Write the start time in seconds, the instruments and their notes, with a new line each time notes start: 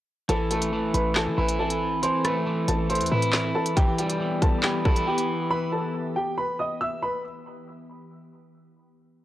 0.29 808-style bass A1, ambient pad E3 C4 A4, clean electric guitar E3, grand piano A4 A5, closed hi-hat
0.51 clean electric guitar A3, grand piano A4 A5, closed hi-hat
0.62 closed hi-hat
0.73 clean electric guitar E3
0.94 808-style bass A1, grand piano B4 B5, closed hi-hat
1.15 clean electric guitar E3, grand piano A4 A5, snare, clap
1.27 808-style bass E3
1.38 808-style bass A1, clean electric guitar E4, grand piano B4 B5
1.49 closed hi-hat
1.59 clean electric guitar E3, grand piano A4 A5
1.70 closed hi-hat
2.03 clean electric guitar E3, grand piano C5 C6, closed hi-hat
2.25 clean electric guitar A3, grand piano B4 B5, cross-stick, closed hi-hat
2.47 clean electric guitar E3
2.68 808-style bass A1, grand piano A4 A5, closed hi-hat
2.90 clean electric guitar E3, grand piano C5 C6, closed hi-hat
2.95 closed hi-hat
3.01 808-style bass E2, closed hi-hat
3.06 closed hi-hat
3.11 808-style bass A2, clean electric guitar E4, grand piano B4 B5
3.22 closed hi-hat
3.33 clean electric guitar E3, snare, clap
3.55 grand piano A4 A5
3.66 closed hi-hat
3.77 clean electric guitar E3, ambient pad B3 G4, grand piano G4 G5, kick, closed hi-hat
3.98 clean electric guitar G3, grand piano G4 G5, closed hi-hat
4.10 closed hi-hat
4.20 clean electric guitar E3
4.42 grand piano A4 A5, kick, closed hi-hat
4.63 clean electric guitar E3, grand piano G4 G5, snare, clap
4.85 clean electric guitar E4, grand piano A4 A5, kick
4.96 closed hi-hat
5.07 clean electric guitar E3, grand piano G4 G5
5.18 closed hi-hat
5.51 grand piano B4 B5
5.72 grand piano A4 A5
6.16 grand piano G4 G5
6.38 grand piano B4 B5
6.59 grand piano D#5 D#6
6.81 grand piano E5 E6
7.02 grand piano B4 B5